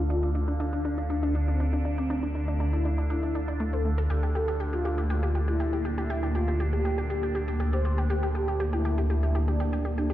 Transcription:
Already playing: detuned saw bass D2, synth drone D3 D4, ambient pad D4 A4 F5, downlifter
0.10 synth arpeggio sound D4, analog synth lead F4
0.23 synth arpeggio sound D4
0.35 synth arpeggio sound D4, analog synth lead F4
0.48 synth arpeggio sound D4
0.60 synth arpeggio sound D4
0.73 synth arpeggio sound D4, analog synth lead D4
0.85 synth arpeggio sound D4
0.98 synth arpeggio sound D4
1.10 analog synth lead D4, synth arpeggio sound D4
1.23 synth arpeggio sound D4
1.35 synth arpeggio sound D4
1.48 analog synth lead C4, synth arpeggio sound D4
1.60 synth arpeggio sound D4
1.73 synth arpeggio sound D4
1.85 synth arpeggio sound D4
1.98 analog synth lead C4, synth arpeggio sound D4
2.10 synth arpeggio sound D4
2.23 synth arpeggio sound D4
2.35 synth arpeggio sound D4, analog synth lead D4
2.48 synth arpeggio sound D4
2.60 synth arpeggio sound D4
2.73 synth arpeggio sound D4, analog synth lead E4
2.85 synth arpeggio sound D4
2.98 synth arpeggio sound D4
3.10 synth arpeggio sound D4, analog synth lead E4
3.23 synth arpeggio sound D4
3.35 synth arpeggio sound D4
3.48 synth arpeggio sound D4
3.60 synth arpeggio sound A3
3.73 synth arpeggio sound C4, analog synth lead A4
3.85 synth arpeggio sound A3
3.98 synth arpeggio sound A4
4.10 detuned saw bass D2, ambient pad A#3 G4, synth arpeggio sound G4, analog synth lead A4
4.23 synth arpeggio sound G4
4.35 synth arpeggio sound G4, analog synth lead A4
4.48 synth arpeggio sound G4
4.60 synth arpeggio sound G4
4.73 analog synth lead F4, synth arpeggio sound G4
4.85 synth arpeggio sound G4
4.98 synth arpeggio sound G4
5.10 analog synth lead F4, synth arpeggio sound G4
5.23 synth arpeggio sound G4
5.35 synth arpeggio sound G4
5.48 analog synth lead E4, synth arpeggio sound G4
5.60 synth arpeggio sound G4
5.73 synth arpeggio sound G4
5.85 synth arpeggio sound G4
5.98 analog synth lead E4, synth arpeggio sound G4
6.10 synth arpeggio sound G4
6.23 synth arpeggio sound G4
6.35 analog synth lead F4, synth arpeggio sound G4
6.48 synth arpeggio sound G4
6.60 synth arpeggio sound G4
6.73 analog synth lead G4, synth arpeggio sound G4
6.85 synth arpeggio sound G4
6.98 synth arpeggio sound G4
7.10 synth arpeggio sound G4, analog synth lead G4
7.23 synth arpeggio sound G4
7.35 synth arpeggio sound G4
7.48 synth arpeggio sound G4
7.60 synth arpeggio sound G4
7.73 synth arpeggio sound G4, analog synth lead C5
7.85 synth arpeggio sound G4
7.98 synth arpeggio sound G4
8.10 synth arpeggio sound G4, analog synth lead G4
8.23 synth arpeggio sound G4
8.35 synth arpeggio sound G4, analog synth lead G4
8.48 synth arpeggio sound G4
8.60 synth arpeggio sound G4
8.73 analog synth lead E4, synth arpeggio sound G4
8.85 synth arpeggio sound G4
8.98 synth arpeggio sound G4
9.10 analog synth lead E4, synth arpeggio sound G4
9.23 synth arpeggio sound G4
9.35 synth arpeggio sound G4
9.48 analog synth lead D4, synth arpeggio sound G4
9.60 synth arpeggio sound G4
9.73 synth arpeggio sound G4
9.85 synth arpeggio sound G4
9.98 analog synth lead D4, synth arpeggio sound G4
10.10 synth arpeggio sound G4

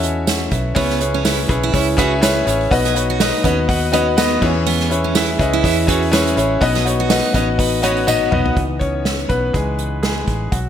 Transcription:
Already playing: fingered electric bass E2, grand piano C#4 E4 F#4 A4 C#5 E5
0.03 grand piano D#5 G#5, hi-hat pedal, open hi-hat
0.27 grand piano C#5 F#5, snare, hi-hat pedal, open hi-hat, tambourine
0.51 fingered electric bass B1, grand piano B4 E5, kick, hi-hat pedal, open hi-hat
0.75 grand piano C#3 C#4 E4 G#4 B4 C#5, steel-string acoustic guitar B3, kick, hi-hat pedal, open hi-hat
0.90 snare
1.00 grand piano C#4 E4 G#4 B4 C#5, hi-hat pedal, open hi-hat
1.14 steel-string acoustic guitar C#4
1.24 grand piano C#4 E4 G#4 B4 C#5, steel-string acoustic guitar E4, snare, hi-hat pedal, open hi-hat, tambourine
1.48 fingered electric bass B1, grand piano C#4 E4 G#4 B4 C#5, kick, hi-hat pedal, open hi-hat
1.63 steel-string acoustic guitar E4
1.72 fingered electric bass C#2, grand piano C#4 E4 G#4 B4 C#5, kick, hi-hat pedal, open hi-hat
1.97 grand piano C#4 E4 G#4 B4 E5, steel-string acoustic guitar F#4, kick, hi-hat pedal, open hi-hat
2.21 grand piano C#4 E4 G#4 B4 C#5, snare, hi-hat pedal, open hi-hat, tambourine
2.46 fingered electric bass A1, grand piano C#4 E4 G#4 B4 C#5, hi-hat pedal, open hi-hat
2.61 open hi-hat
2.71 fingered electric bass B1, grand piano B2 B3 D#4 F#4 B4 D#5, kick, hi-hat pedal, open hi-hat
2.85 steel-string acoustic guitar G#4, snare, hi-hat pedal
2.95 grand piano B3 D#4 F#4 B4 C#5, hi-hat pedal, open hi-hat
3.10 steel-string acoustic guitar F#4
3.19 grand piano B3 D#4 F#4 B4 D#5, steel-string acoustic guitar D#4, snare, hi-hat pedal, open hi-hat, tambourine
3.44 fingered electric bass D#2, grand piano B3 D#4 F#4 B4 D#5, steel-string acoustic guitar C#4, kick, hi-hat pedal, open hi-hat
3.68 grand piano B3 D#4 F#4 B4 F#5, kick, hi-hat pedal, open hi-hat
3.92 grand piano B3 D#4 F#4 B4 D#5, steel-string acoustic guitar C#4, hi-hat pedal, open hi-hat
4.17 grand piano B3 D#4 F#4 B4 D#5, steel-string acoustic guitar B3, snare, hi-hat pedal, open hi-hat, tambourine
4.41 fingered electric bass E2, grand piano E3 C#4 E4 G#4 B4 C#5, kick, crash
4.66 steel-string acoustic guitar B3, hi-hat pedal, open hi-hat
4.80 snare
4.90 grand piano C#4 E4 G#4 B4 C#5, hi-hat pedal, open hi-hat
5.04 steel-string acoustic guitar C#4
5.15 grand piano C#4 E4 G#4 B4 E5, steel-string acoustic guitar E4, snare, hi-hat pedal, open hi-hat, tambourine
5.39 fingered electric bass C#2, grand piano C#4 E4 G#4 B4 D#5, kick, hi-hat pedal, open hi-hat
5.53 steel-string acoustic guitar E4
5.63 fingered electric bass E2, grand piano C#4 E4 G#4 B4 E5, kick, hi-hat pedal, open hi-hat
5.87 grand piano C#4 E4 G#4 B4 C#5, steel-string acoustic guitar F#4, kick, hi-hat pedal, open hi-hat
6.02 open hi-hat
6.12 grand piano C#4 E4 G#4 B4 C#5, snare, hi-hat pedal, open hi-hat, tambourine
6.27 hi-hat pedal
6.36 fingered electric bass A1, grand piano C#4 E4 G#4 B4 C#5, hi-hat pedal, open hi-hat
6.61 fingered electric bass B1, grand piano B2 B3 D#4 F#4 B4 D#5, kick, hi-hat pedal, open hi-hat
6.75 steel-string acoustic guitar G#4, snare
6.85 grand piano B3 D#4 F#4 B4 C#5, hi-hat pedal, open hi-hat
7.00 steel-string acoustic guitar F#4
7.09 grand piano B3 D#4 F#4 B4 D#5, steel-string acoustic guitar D#4, snare, hi-hat pedal, open hi-hat, tambourine
7.34 fingered electric bass A1, grand piano B3 D#4 F#4 B4 D#5, steel-string acoustic guitar C#4, kick, hi-hat pedal, open hi-hat
7.58 grand piano B3 D#4 F#4 B4 F#5, kick, hi-hat pedal, open hi-hat
7.82 grand piano B3 D#4 F#4 B4 C#5, steel-string acoustic guitar C#4, hi-hat pedal, open hi-hat
7.97 open hi-hat
8.07 grand piano B3 D#4 F#4 B4 D#5, steel-string acoustic guitar B3, high tom, tambourine
8.31 fingered electric bass B1, grand piano B3 D#4 F#4 B4 D#5, mid tom
8.46 floor tom
8.56 fingered electric bass C#2, grand piano E3 B3 D#4, kick, closed hi-hat
8.79 grand piano C#4 C#5, kick, closed hi-hat
9.05 snare, closed hi-hat
9.19 closed hi-hat
9.29 fingered electric bass B1, grand piano B3 B4, kick, closed hi-hat
9.53 fingered electric bass C#2, grand piano E3 G#3 B3 D#4 G#4, kick, closed hi-hat
9.79 closed hi-hat
10.03 grand piano G#3 G#4, snare, closed hi-hat
10.27 fingered electric bass A1, kick, closed hi-hat
10.52 fingered electric bass B1, grand piano F#3 F#4, kick, closed hi-hat

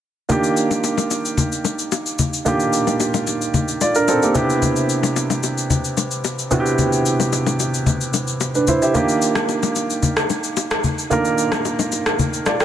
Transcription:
0.29 grand piano D#3 A#3 D4 F4 G4, low conga, shaker
0.44 shaker
0.57 shaker
0.71 low bongo, shaker
0.84 high bongo, shaker
0.98 low bongo, shaker
1.11 high bongo, shaker
1.25 shaker
1.37 low conga, shaker
1.52 shaker
1.65 low bongo, shaker
1.79 shaker
1.92 high bongo, shaker
2.06 shaker
2.19 low conga, shaker
2.34 shaker
2.45 grand piano D#3 A#3 D4 F4 G4, low conga, shaker
2.60 shaker
2.73 shaker
2.87 low bongo, shaker
3.00 high bongo, shaker
3.14 low bongo, shaker
3.27 high bongo, shaker
3.42 shaker
3.54 low conga, shaker
3.68 shaker
3.81 grand piano F4 D5, low bongo, shaker
3.95 grand piano D4 A#4, shaker
4.08 grand piano C4 A4, high bongo, shaker
4.22 grand piano A#3 G4, shaker
4.34 grand piano C3 B3 D4 E4 G4, low conga, shaker
4.50 shaker
4.62 low conga, shaker
4.76 shaker
4.89 shaker
5.03 low bongo, shaker
5.16 high bongo, shaker
5.30 low bongo, shaker
5.43 high bongo, shaker
5.58 shaker
5.70 low conga, shaker
5.85 shaker
5.97 low bongo, shaker
6.11 shaker
6.24 high bongo, shaker
6.39 shaker
6.51 grand piano C3 B3 D4 E4 F#4, low conga, shaker
6.60 grand piano G4
6.66 shaker
6.78 low conga, shaker
6.93 shaker
7.06 shaker
7.20 low bongo, shaker
7.33 high bongo, shaker
7.46 low bongo, shaker
7.60 high bongo, shaker
7.74 shaker
7.86 low conga, shaker
8.01 shaker
8.14 low bongo, shaker
8.27 shaker
8.41 high bongo, shaker
8.55 grand piano D4 B4, shaker
8.67 grand piano E4 C5, low conga, shaker
8.82 grand piano G4 E5, shaker
8.94 grand piano D#3 A#3 D4 F4 G4, low conga, shaker
9.09 shaker
9.22 shaker
9.35 cross-stick, low bongo, shaker
9.49 high bongo, shaker
9.63 low bongo, shaker
9.76 high bongo, shaker
9.90 shaker
10.03 low conga, shaker
10.17 cross-stick, shaker
10.30 low bongo, shaker
10.44 shaker
10.57 high bongo, shaker
10.71 cross-stick, shaker
10.84 low conga, shaker
10.99 shaker
11.10 grand piano D#3 A#3 D4 F4 A#4, low conga, shaker
11.25 shaker
11.38 shaker
11.52 cross-stick, low bongo, shaker
11.65 high bongo, shaker
11.79 low bongo, shaker
11.92 high bongo, shaker
12.06 cross-stick, shaker
12.19 low conga, shaker
12.33 shaker
12.46 grand piano F4 D5, cross-stick, low bongo, shaker
12.60 grand piano A#4 G5, cross-stick, shaker

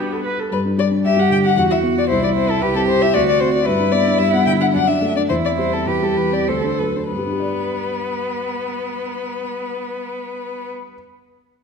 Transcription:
Already playing: grand piano G2 G3 D4, cello B3, viola G4, violin B4
0.00 grand piano G4
0.12 viola A4
0.25 viola B4
0.40 viola A4
0.51 grand piano G2, violin B4
0.65 grand piano D4
0.78 grand piano G3, violin D5
0.91 grand piano D4
1.04 grand piano G2, cello G4, violin E5
1.17 grand piano G3, violin F#5
1.30 grand piano D3, violin G5
1.44 grand piano D4, violin F#5
1.57 grand piano E2, cello F#4, violin F#5
1.70 grand piano E4, violin E5
1.83 grand piano B3
1.96 grand piano E4, violin D5
2.09 grand piano C2, cello E4, violin C5
2.22 grand piano E4, violin D5
2.35 grand piano C4, violin C5
2.49 grand piano E4, violin A4
2.61 grand piano C2, cello G4, violin B4
2.75 grand piano C4, violin A4
2.88 grand piano C3, violin C5
3.02 grand piano E4, violin E5
3.14 grand piano D2, cello F#4, violin D5
3.28 grand piano F#4, violin D5
3.40 grand piano C4, violin C5
3.53 grand piano F#4, violin D5
3.65 grand piano G2, cello E4, violin B4
3.79 grand piano D4
3.92 grand piano B3, violin D5
4.07 grand piano D4
4.18 grand piano G2, violin E5
4.33 grand piano B3, violin F#5
4.46 grand piano D3, violin G5
4.60 grand piano D4, violin F#5
4.73 grand piano F#2, cello D4, violin F#5
4.87 grand piano D4, violin E5
5.02 grand piano A3
5.16 grand piano D4, violin D5
5.29 grand piano E2, cello E4, violin C5
5.44 grand piano C4, violin D5
5.57 grand piano G3, violin C5
5.72 grand piano C4, violin A4
5.87 grand piano E2, cello G4, violin B4
6.02 grand piano G3, violin A4
6.17 grand piano E3, violin B4
6.32 grand piano C4, violin D5
6.47 grand piano D2, cello A4, violin C5
6.64 grand piano D4, violin C5
6.79 grand piano F#3, violin B4
6.95 grand piano D4, violin C5
7.10 grand piano G2, cello B3, violin B4
7.18 grand piano G3
7.26 grand piano D4
7.33 grand piano G4
7.40 grand piano D5

